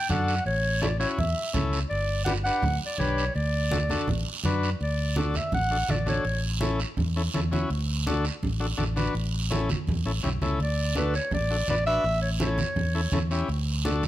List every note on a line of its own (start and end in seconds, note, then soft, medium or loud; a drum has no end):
0.09 0.38 F#2 medium
0.09 0.35 D4 medium
0.09 0.35 F#4 medium
0.09 0.35 A4 medium
0.09 0.44 F#5 medium
0.09 high conga medium
0.09 short guiro medium
0.28 short guiro medium
0.46 1.04 A1 medium
0.46 0.83 C#5 medium
0.46 high conga soft
0.46 long guiro medium
0.82 0.88 C#4 medium
0.82 0.88 E4 medium
0.82 0.88 A4 medium
0.82 0.99 D5 medium
0.82 high conga medium
0.82 short guiro medium
0.99 1.19 C#4 medium
0.99 1.19 E4 medium
0.99 1.19 F#4 medium
0.99 1.08 C#5 medium
0.99 short guiro medium
1.18 1.33 E2 loud
1.18 1.52 E5 medium
1.18 low conga medium
1.18 long guiro medium
1.37 high conga soft
1.54 1.83 C#2 medium
1.54 1.79 C#4 medium
1.54 1.79 E4 medium
1.54 1.80 A4 medium
1.54 high conga medium
1.54 low conga medium
1.54 short guiro medium
1.73 short guiro medium
1.90 2.49 G1 medium
1.90 2.24 D5 medium
1.90 high conga soft
1.90 long guiro medium
2.25 2.33 D4 medium
2.25 2.33 G4 medium
2.25 2.34 B4 medium
2.25 2.33 F#5 medium
2.25 high conga medium
2.25 short guiro medium
2.44 2.64 D4 medium
2.44 2.65 G4 medium
2.44 2.65 B4 medium
2.44 2.78 F#5 loud
2.44 short guiro medium
2.62 2.77 D2 loud
2.62 low conga medium
2.62 long guiro medium
2.81 high conga soft
2.86 3.00 D5 medium
2.98 3.28 B1 medium
2.98 3.25 D4 medium
2.98 3.25 G4 medium
2.98 3.25 B4 medium
2.98 3.34 C#5 loud
2.98 high conga medium
2.98 short guiro medium
3.18 short guiro medium
3.35 3.93 D2 medium
3.35 4.40 D5 medium
3.35 high conga soft
3.35 long guiro medium
3.71 3.78 D4 medium
3.71 3.78 F#4 medium
3.71 3.78 A4 medium
3.71 high conga medium
3.71 short guiro medium
3.90 4.09 D4 medium
3.90 4.09 F#4 medium
3.90 4.09 A4 medium
3.90 high conga medium
3.90 short guiro medium
4.08 4.23 A1 loud
4.08 low conga medium
4.08 long guiro medium
4.25 high conga soft
4.43 4.73 F#2 medium
4.43 4.70 D4 medium
4.43 4.70 F#4 medium
4.43 4.70 B4 medium
4.43 high conga medium
4.43 short guiro medium
4.63 short guiro medium
4.80 5.38 D2 medium
4.80 5.15 D5 medium
4.80 high conga soft
4.80 long guiro medium
5.16 5.35 D4 medium
5.16 5.36 F#4 medium
5.16 5.36 A4 medium
5.16 5.38 D5 medium
5.16 high conga medium
5.16 short guiro medium
5.34 5.54 E5 medium
5.34 high conga medium
5.34 short guiro medium
5.52 5.81 A1 medium
5.52 5.92 F#5 loud
5.52 low conga medium
5.52 long guiro medium
5.71 5.77 D4 medium
5.71 5.77 F#4 medium
5.71 5.77 A4 medium
5.71 high conga soft
5.89 6.18 A1 medium
5.89 5.95 D4 medium
5.89 5.95 F#4 medium
5.89 5.95 A4 medium
5.89 6.08 D5 medium
5.89 high conga medium
5.89 short guiro medium
6.06 6.25 D4 medium
6.06 6.25 F#4 medium
6.06 6.25 A4 medium
6.06 6.42 C#5 medium
6.06 high conga medium
6.06 short guiro medium
6.25 6.83 A1 medium
6.25 high conga soft
6.25 long guiro medium
6.61 6.80 C#4 medium
6.61 6.80 E4 medium
6.61 6.80 A4 medium
6.61 high conga medium
6.61 short guiro medium
6.80 short guiro medium
6.97 7.27 E2 medium
6.97 low conga medium
6.97 long guiro medium
7.16 7.22 C#4 medium
7.16 7.22 E4 medium
7.16 7.23 A4 medium
7.16 high conga soft
7.34 7.63 E2 medium
7.34 7.40 C#4 medium
7.34 7.40 E4 medium
7.34 7.41 A4 medium
7.34 high conga medium
7.34 short guiro medium
7.52 7.70 C#4 medium
7.52 7.70 E4 medium
7.52 7.70 F#4 medium
7.52 high conga medium
7.52 short guiro medium
7.70 8.28 D2 medium
7.70 high conga soft
7.70 long guiro medium
8.07 8.25 D4 medium
8.07 8.25 F#4 medium
8.07 8.26 A4 loud
8.07 high conga medium
8.07 short guiro medium
8.25 short guiro medium
8.43 8.71 A1 medium
8.43 low conga medium
8.43 long guiro medium
8.60 8.66 D4 medium
8.60 8.67 F#4 medium
8.60 8.67 A4 medium
8.60 high conga soft
8.78 9.08 A1 medium
8.78 8.84 D4 medium
8.78 8.84 F#4 medium
8.78 8.84 A4 medium
8.78 high conga medium
8.78 short guiro medium
8.96 9.14 D4 medium
8.96 9.14 F#4 medium
8.96 9.15 B4 medium
8.96 high conga medium
8.96 short guiro medium
9.15 9.73 A1 loud
9.15 high conga soft
9.15 long guiro medium
9.50 9.70 C#4 medium
9.50 9.70 E4 medium
9.50 9.70 A4 medium
9.50 high conga medium
9.50 short guiro medium
9.69 high conga medium
9.69 short guiro medium
9.87 10.02 E2 medium
9.87 low conga medium
9.87 long guiro medium
10.05 10.21 A1 medium
10.05 10.12 C#4 medium
10.05 10.12 E4 medium
10.05 10.12 A4 medium
10.05 high conga soft
10.23 10.40 B1 medium
10.23 10.29 C#4 medium
10.23 10.30 E4 medium
10.23 10.30 G4 medium
10.23 high conga medium
10.23 short guiro medium
10.42 10.58 C#2 medium
10.42 10.60 C#4 medium
10.42 10.60 E4 medium
10.42 10.60 A4 medium
10.42 high conga medium
10.42 short guiro medium
10.60 11.17 D2 loud
10.60 10.95 D5 medium
10.60 high conga soft
10.60 long guiro medium
10.95 11.15 D4 medium
10.95 11.15 F#4 medium
10.95 11.15 A4 medium
10.95 11.13 B4 medium
10.95 high conga medium
10.95 short guiro medium
11.14 11.31 C#5 medium
11.14 short guiro medium
11.31 11.61 A1 loud
11.31 11.67 D5 medium
11.31 low conga medium
11.31 long guiro medium
11.50 11.56 D4 medium
11.50 11.57 F#4 medium
11.50 11.57 A4 medium
11.50 high conga soft
11.68 11.97 A1 medium
11.68 11.75 D4 medium
11.68 11.75 F#4 medium
11.68 11.75 B4 medium
11.68 11.86 D5 loud
11.68 high conga medium
11.68 short guiro medium
11.86 12.05 D4 medium
11.86 12.05 F#4 soft
11.86 12.05 B4 medium
11.86 12.20 E5 loud
11.86 short guiro medium
12.04 12.62 A1 loud
12.04 high conga soft
12.04 long guiro medium
12.22 12.30 C#5 medium
12.39 12.60 C#4 medium
12.39 12.60 E4 medium
12.39 12.60 A4 medium
12.39 13.26 C#5 medium
12.39 high conga medium
12.39 short guiro medium
12.58 high conga medium
12.58 short guiro medium
12.76 13.05 E2 medium
12.76 low conga medium
12.76 long guiro medium
12.94 13.01 C#4 medium
12.94 13.01 E4 medium
12.94 13.01 A4 medium
12.94 high conga soft
13.12 13.41 E2 medium
13.12 13.19 C#4 medium
13.12 13.19 E4 medium
13.12 13.19 A4 medium
13.12 high conga medium
13.12 low conga medium
13.12 short guiro medium
13.31 13.49 C#4 medium
13.31 13.49 E4 medium
13.31 13.49 G4 medium
13.31 short guiro medium
13.48 14.07 D2 loud
13.48 high conga soft
13.48 long guiro medium
13.85 14.04 D4 medium
13.85 14.04 F#4 medium
13.85 14.04 A4 medium
13.85 high conga medium
13.85 short guiro medium
14.03 high conga medium
14.03 short guiro medium